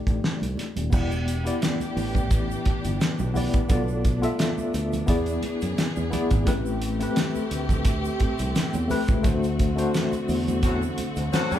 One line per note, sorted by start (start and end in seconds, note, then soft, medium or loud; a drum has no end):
0.00 0.67 A3 medium
0.00 0.68 D#4 medium
0.00 0.68 G4 medium
0.00 0.69 D5 loud
0.07 0.20 A1 medium
0.07 kick medium
0.07 closed hi-hat soft
0.23 muted fingered electric bass stroke soft
0.23 snare loud
0.42 0.55 C2 medium
0.42 closed hi-hat medium
0.42 high conga medium
0.57 snare soft
0.57 closed hi-hat medium
0.57 high conga medium
0.76 0.90 D#1 medium
0.76 closed hi-hat medium
0.76 high conga medium
0.90 1.49 E1 medium
0.90 3.67 E3 medium
0.90 1.35 B3 medium
0.90 6.43 B3 medium
0.90 6.43 D4 medium
0.90 1.35 E4 medium
0.90 1.36 G4 medium
0.90 3.67 G4 medium
0.90 1.36 D5 medium
0.90 kick loud
0.90 crash medium
0.90 low conga medium
0.90 shaker medium
1.11 shaker soft
1.27 closed hi-hat medium
1.27 muted conga soft
1.27 shaker soft
1.44 2.58 B3 medium
1.44 2.58 E4 medium
1.44 2.59 G4 medium
1.44 2.60 D5 medium
1.44 closed hi-hat medium
1.44 shaker soft
1.61 snare loud
1.61 closed hi-hat loud
1.61 muted conga soft
1.61 shaker medium
1.80 closed hi-hat soft
1.80 high conga medium
1.80 shaker soft
1.97 2.53 A1 medium
1.97 open hi-hat soft
1.97 shaker soft
2.15 kick medium
2.15 closed hi-hat soft
2.15 low conga medium
2.15 shaker soft
2.31 kick loud
2.31 closed hi-hat medium
2.31 high conga soft
2.31 shaker medium
2.51 shaker soft
2.65 muted fingered electric bass stroke soft
2.65 kick medium
2.65 closed hi-hat medium
2.65 high conga medium
2.84 2.98 G1 medium
2.84 closed hi-hat soft
2.84 shaker medium
3.01 muted fingered electric bass stroke soft
3.01 snare loud
3.01 closed hi-hat medium
3.01 shaker medium
3.19 3.48 B1 medium
3.19 high conga medium
3.19 shaker medium
3.34 3.63 B3 medium
3.34 3.64 E4 medium
3.34 3.65 G4 medium
3.34 3.65 D5 loud
3.34 open hi-hat medium
3.34 muted conga soft
3.34 high conga medium
3.34 low conga medium
3.34 shaker medium
3.53 kick medium
3.53 closed hi-hat medium
3.53 high conga medium
3.53 shaker soft
3.68 4.26 B1 loud
3.68 5.07 A3 medium
3.68 4.12 B3 medium
3.68 4.13 F4 medium
3.68 4.14 A4 medium
3.68 4.14 D5 medium
3.68 kick loud
3.68 closed hi-hat medium
3.68 muted conga soft
3.68 low conga medium
3.68 shaker medium
3.88 shaker soft
4.05 kick medium
4.05 closed hi-hat medium
4.05 muted conga soft
4.05 shaker soft
4.21 5.05 B3 medium
4.21 5.08 F4 medium
4.21 5.09 A4 medium
4.21 5.09 E5 loud
4.21 closed hi-hat medium
4.21 shaker medium
4.39 snare loud
4.39 closed hi-hat medium
4.39 shaker medium
4.58 high conga medium
4.58 shaker soft
4.74 5.02 D2 medium
4.74 closed hi-hat medium
4.74 shaker medium
4.93 closed hi-hat soft
4.93 low conga medium
4.93 shaker soft
5.06 5.37 E2 loud
5.06 6.46 E3 medium
5.06 5.94 B3 medium
5.06 5.94 E4 medium
5.06 6.46 G#4 medium
5.06 5.95 G#4 medium
5.06 5.96 D5 medium
5.06 kick medium
5.06 closed hi-hat medium
5.06 muted conga soft
5.06 high conga soft
5.06 shaker medium
5.26 closed hi-hat soft
5.26 shaker medium
5.43 muted fingered electric bass stroke soft
5.43 closed hi-hat medium
5.43 muted conga soft
5.43 high conga medium
5.61 5.75 F#2 medium
5.61 closed hi-hat soft
5.61 shaker medium
5.78 muted fingered electric bass stroke medium
5.78 snare loud
5.78 closed hi-hat medium
5.78 muted conga soft
5.78 shaker medium
5.96 6.10 E2 medium
5.96 high conga medium
5.96 shaker soft
6.10 6.40 B3 medium
6.10 6.41 E4 medium
6.10 6.41 G#4 medium
6.10 6.42 D5 loud
6.10 closed hi-hat medium
6.10 muted conga soft
6.10 high conga medium
6.10 low conga medium
6.10 shaker medium
6.31 6.47 G#1 loud
6.31 kick loud
6.31 closed hi-hat medium
6.31 high conga medium
6.31 shaker soft
6.45 7.04 A1 loud
6.45 6.89 A3 medium
6.45 9.21 A3 medium
6.45 6.90 C4 medium
6.45 11.59 C4 medium
6.45 9.21 G4 medium
6.45 6.90 G4 medium
6.45 6.91 B4 medium
6.45 kick loud
6.45 closed hi-hat medium
6.45 muted conga soft
6.45 low conga medium
6.45 shaker medium
6.66 shaker soft
6.82 closed hi-hat medium
6.82 shaker soft
6.99 8.13 A3 medium
6.99 8.13 C4 medium
6.99 8.14 G4 medium
6.99 8.15 B4 medium
6.99 closed hi-hat medium
6.99 shaker soft
7.16 snare loud
7.16 closed hi-hat medium
7.16 shaker medium
7.35 high conga medium
7.35 shaker soft
7.51 8.08 D2 medium
7.51 closed hi-hat medium
7.51 shaker soft
7.69 kick medium
7.69 closed hi-hat soft
7.69 low conga medium
7.69 shaker medium
7.85 kick medium
7.85 closed hi-hat loud
7.85 muted conga soft
7.85 high conga soft
7.85 shaker medium
8.05 shaker medium
8.20 muted fingered electric bass stroke soft
8.20 kick medium
8.20 closed hi-hat medium
8.20 muted conga soft
8.20 high conga medium
8.39 8.53 C2 medium
8.39 closed hi-hat medium
8.39 shaker soft
8.55 snare loud
8.55 closed hi-hat medium
8.55 muted conga soft
8.55 shaker medium
8.74 8.87 E2 medium
8.74 closed hi-hat soft
8.74 high conga medium
8.74 shaker medium
8.88 9.18 A3 loud
8.88 9.18 C4 medium
8.88 9.19 G4 medium
8.88 9.19 B4 loud
8.88 open hi-hat medium
8.88 muted conga soft
8.88 high conga medium
8.88 low conga medium
8.88 shaker soft
9.08 9.22 C#2 medium
9.08 kick loud
9.08 closed hi-hat medium
9.08 high conga medium
9.08 shaker soft
9.23 9.81 D2 loud
9.23 11.59 D3 medium
9.23 9.67 A3 medium
9.23 11.59 A3 medium
9.23 9.68 D4 medium
9.23 11.59 F#4 medium
9.23 9.68 F#4 medium
9.23 9.69 C5 medium
9.23 kick loud
9.23 closed hi-hat medium
9.23 low conga medium
9.23 shaker medium
9.43 closed hi-hat soft
9.43 shaker soft
9.59 kick medium
9.59 closed hi-hat medium
9.59 muted conga soft
9.59 shaker soft
9.75 10.90 A3 medium
9.75 10.90 D4 medium
9.75 10.91 F#4 medium
9.75 10.91 C5 loud
9.75 closed hi-hat medium
9.75 shaker soft
9.94 snare loud
9.94 closed hi-hat medium
9.94 shaker medium
10.12 closed hi-hat soft
10.12 high conga medium
10.12 shaker soft
10.29 10.85 E2 medium
10.29 open hi-hat soft
10.29 muted conga soft
10.29 shaker soft
10.48 closed hi-hat soft
10.48 low conga medium
10.48 shaker medium
10.63 10.79 D3 medium
10.63 10.79 F#3 medium
10.63 10.79 C4 medium
10.63 10.79 F#4 medium
10.63 kick medium
10.63 closed hi-hat medium
10.63 muted conga soft
10.63 high conga soft
10.63 shaker medium
10.82 shaker soft
10.98 muted fingered electric bass stroke soft
10.98 closed hi-hat medium
10.98 high conga medium
11.16 11.30 D2 medium
11.16 closed hi-hat medium
11.16 shaker medium
11.33 11.59 D3 medium
11.33 11.59 F#3 medium
11.33 11.59 C4 medium
11.33 11.59 F#4 medium
11.33 muted fingered electric bass stroke soft
11.33 snare loud
11.33 closed hi-hat medium
11.33 muted conga soft
11.33 shaker medium
11.51 11.59 F#2 medium
11.51 closed hi-hat soft
11.51 high conga medium
11.51 shaker soft